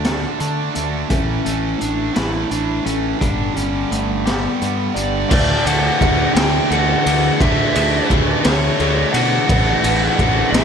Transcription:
Already playing: D2 D3 A3 D4
0.04 D3 A3 D4 A4, snare, closed hi-hat
0.40 D3 A3 D4, closed hi-hat
0.74 D2 D3 A3 D4, closed hi-hat
1.09 A1 A2 E3 A3 C#4, kick, closed hi-hat
1.45 A1 A2 E3 A3, closed hi-hat
1.80 A1 D4, closed hi-hat
2.14 A1 A2 E3 A3 E4 B4, snare, closed hi-hat
2.51 A1 A2 E3 A3 D4, closed hi-hat
2.85 A1 A2 E3 A3 C#4, closed hi-hat
3.18 G1 G2 D3 D4, kick, closed hi-hat
3.23 G3
3.55 G1 G2 D3 G3 C#4, closed hi-hat
3.91 G1 A3 B3, closed hi-hat
4.25 G2 D3 G3 B3 G4, snare, closed hi-hat
4.61 G2 D3 G3 B3, closed hi-hat
4.94 G1 G2 D3 G3 D5, closed hi-hat
5.29 D2 D3 E3 A3 D4 D5, kick, crash
5.65 D2 E3 A3 D4 F#5, ride
5.99 D2 D3 E3 A3 D4, kick, ride
6.35 D2 A3 D4 G5, snare, ride
6.39 E3
6.69 D2 D3 E3 A3 D4 F#5, ride
7.05 D2 E3 A3 D4, ride
7.39 D2 D3 E3 A3 D4 E5, kick, ride
7.74 D2 E3 A3 D4, ride
8.10 D2 D3 E3 A3 D4, kick, ride
8.44 D2 E3 A3 D4 C#5, snare, ride
8.80 D2 D3 E3 A3 D4, ride
9.13 B2 E3 A3 D4 F#5, ride
9.49 A1 A2 D3 E3 A3 D4, kick, ride
9.84 A1 E3 A3 D4, ride
10.19 A1 D3 E3 A3 D4, kick, ride
10.51 A1 D4 E5, snare, ride
10.56 E3 A3

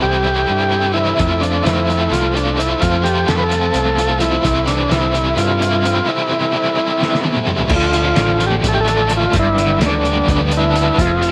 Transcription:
Already playing: A4 C5 E5
0.02 C2 E3 G3 C4 E4 G4
0.26 G3 C4 E4
0.50 G2
0.72 G3 C4 E4
0.94 C3 E3 G3 E4
0.98 C4 E4
1.19 F2 F3 A3 C4 F4 C5 A5, kick, closed hi-hat
1.41 C4 D4 F4, closed hi-hat
1.45 A3
1.63 F2 F3 A3 C4 E4, snare, closed hi-hat
1.68 F4
1.89 A3 C4 F4, closed hi-hat
2.11 C2 F4, snare, closed hi-hat
2.35 A3 C4 D4 F4, closed hi-hat
2.56 F3 A3 C4 E4 F4, closed hi-hat
2.80 F2 F3 A3 C4 F4, kick, closed hi-hat
2.85 F4
3.04 C4 F4 G4, closed hi-hat
3.08 A3
3.28 F2 F3 A3 C4 F4 A4, snare, closed hi-hat
3.38 B4
3.43 A4
3.51 A3 C4 F4, closed hi-hat
3.74 C2, closed hi-hat
3.98 A3 C4 F4, closed hi-hat
4.20 F3 A3 C4 E4 F4, closed hi-hat
4.43 C2 C3 E3 G3 C4 E4 A4 E5, kick, closed hi-hat
4.67 G3 C4 D4 E4, snare, closed hi-hat
4.91 C2 E3 G3 C4 E4, snare, closed hi-hat
5.14 G3 C4 E4, closed hi-hat
5.37 G2 F4, closed hi-hat
5.62 G3 C4 E4, closed hi-hat
5.85 C3 E3 G3 C4 E4, closed hi-hat
6.07 C3 E3 G3 C4 E4
6.31 G3 C4 E4
6.54 E3 G3 C4 E4
6.78 G3 C4 E4
7.02 snare
7.15 snare
7.24 G3 C4 E4, high tom
7.37 mid tom
7.46 C3 E3 G3 C4 E4, mid tom
7.59 floor tom
7.68 D2 D3 A4 D5 F5, kick, crash, high conga, low conga
7.76 F4
7.93 F3, closed hi-hat
8.16 A1 D3, snare, closed hi-hat
8.29 low conga
8.40 F3, snare, closed hi-hat
8.47 G4
8.51 high conga
8.64 A1 A3, kick, closed hi-hat
8.68 A4
8.74 G4, low conga
8.81 A4
8.88 D4, closed hi-hat
9.09 A3, closed hi-hat
9.17 F4
9.31 G1 G2 B4 D5 G5, kick, closed hi-hat, high conga, low conga
9.39 E4
9.58 D3, closed hi-hat
9.79 D2 D3, snare, closed hi-hat
9.86 D4
9.94 low conga
10.05 G3, closed hi-hat
10.16 high conga
10.28 D2 B3 D4, kick, closed hi-hat
10.40 low conga
10.51 D4, closed hi-hat
10.57 E4
10.76 B3, closed hi-hat
10.98 F1 F2 F4 C5 F5 A5, kick, closed hi-hat, high conga, low conga
11.22 C3, closed hi-hat

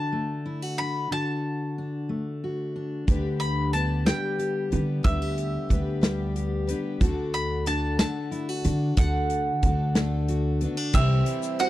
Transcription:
Already playing: D3 D4 F#4 A5
0.12 A3
0.46 E4
0.62 F#4
0.78 D4 B5
1.11 D3 F#4 A5
1.78 D4
2.09 A3
2.44 F#4
2.76 D4
3.07 D2 D3 G3 D4 G4 B4, kick, closed hi-hat
3.40 B5, closed hi-hat
3.73 G3 B3 D4 G4 B4 A5, closed hi-hat
4.05 D3 G3 D4 G4 B4 G5, snare, closed hi-hat
4.38 G4, closed hi-hat
4.71 D3 B3 D4 G4 B4, closed hi-hat
5.03 D2 D3 G3 D4 E4 G4 B4 E5, kick, closed hi-hat
5.22 G4
5.38 closed hi-hat
5.69 D2 G3 B3 D4 G4 B4, kick, closed hi-hat
6.01 D3 G3 D4 G4 B4, snare, closed hi-hat
6.36 G4, closed hi-hat
6.67 B3 D4 G4 B4, closed hi-hat
7.00 D2 D3 A3 D4 F#4 A4, kick, closed hi-hat
7.34 B5, closed hi-hat
7.65 A3 D4 F#4 A4 A5, closed hi-hat
7.99 D3 A3 D4 F#4 A4 A5, snare, closed hi-hat
8.31 E4, closed hi-hat
8.49 F#4
8.64 D3 D4 F#4 A4, closed hi-hat
8.97 D2 D3 A3 D4 F#4 A4 F#5, kick, closed hi-hat
9.30 closed hi-hat
9.63 D2 A3 D4 F#4 A4, kick, closed hi-hat
9.95 D3 A3 D4 F#4 A4, snare, closed hi-hat
10.28 F#4, closed hi-hat
10.61 B3 D4 F#4 A4, closed hi-hat
10.77 D4
10.93 C2 C3 E3 G3 C4 E4 G4 C5 E5, kick, crash, shaker
11.26 closed hi-hat
11.43 shaker
11.59 G3 C4 E4 F#4 C5 F#5, closed hi-hat

